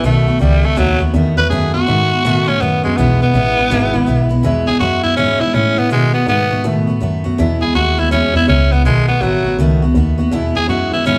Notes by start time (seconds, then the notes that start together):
0.03 B1 B2 D#3 A3 B3 F#4
0.27 B1 A3 B3 F#4
0.39 C#2 D#3 G3 A3 B3 F#4
0.63 C#2 A3 B3 F#4
0.76 D#2 B2 D#3 F#3 A3 B3 F#4
0.99 D#2 A3 B3 F#4
1.13 E2 D#3 A3 B3 F#4
1.37 E2 A3 B3 F#4 B4
1.50 F#2 B2 D#3 A3 B3 F#4 G#4
1.74 F#2 A3 B3 F#4
1.87 G#2 D#3 A3 B3 F#4
2.11 G#2 A3 B3 F#4
2.25 A2 B2 D#3 A3 B3 F#4
2.47 A2 A3 B3 C#4 F#4
2.60 F#2 D#3 A3 B3 F#4
2.83 F#2 G#3 A3 B3 F#4
2.97 B1 E2 B2 E3 G#3 B3 E4
3.21 B1 E3 G#3 B3 E4
3.34 A1 E3 G#3 B3 E4
3.57 A1 E3 G#3 B3 E4
3.70 G#1 E2 B2 E3 G#3 B3 E4
3.93 G#1 E3 G#3 B3 E4
4.06 B1 E3 G#3 B3 E4
4.29 B1 E3 G#3 B3 E4
4.43 E2 B2 E3 G#3 B3 E4
4.66 E2 E3 G#3 B3 E4 G#4
4.79 F#2 E3 G#3 B3 E4 F#4
5.03 F#2 E3 G#3 B3 E4
5.16 E2 G#2 B2 E3 G#3 B3 C#4 E4
5.40 G#2 E3 G#3 B3 E4
5.54 A2 E3 G#3 B3 C#4 E4
5.76 A2 E3 G#3 B3 E4
5.90 B2 D#3 G#3 A3 B3 F#4
6.13 B2 A3 B3 F#4
6.27 G#2 D#3 A3 B3 F#4
6.51 G#2 A3 B3 F#4
6.64 A2 B2 D#3 A3 B3 F#4
6.87 A2 A3 B3 F#4
7.00 F#2 D#3 A3 B3 F#4
7.24 F#2 A3 B3 F#4
7.38 E2 B2 E3 G#3 B3 E4
7.61 E2 E3 G#3 B3 E4 G#4
7.74 D#2 E3 G#3 B3 E4 F#4
7.97 D#2 E3 G#3 B3 E4
8.11 E2 B2 E3 G#3 B3 C#4 E4
8.34 E2 E3 G#3 B3 E4
8.47 C#2 E3 G#3 B3 C#4 E4
8.71 C#2 E3 G#3 B3 E4
8.84 B1 B2 D#3 G#3 A3 B3 F#4
9.07 B1 A3 B3 F#4
9.21 A1 D#3 F#3 A3 B3 F#4
9.43 A1 A3 B3 F#4
9.57 C#2 B2 D#3 A3 B3 F#4
9.81 C#2 B3 F#4
9.85 A3
9.94 D#2 D#3 A3 B3 F#4
10.18 D#2 A3 B3 F#4
10.31 E2 B2 E3 G#3 B3 E4
10.55 E2 E3 G#3 B3 E4 G#4
10.68 F#2 E3 G#3 B3 E4 F#4
10.91 F#2 E3 G#3 B3 E4
11.05 E2 G#2 B2 E3 G#3 B3 C#4 E4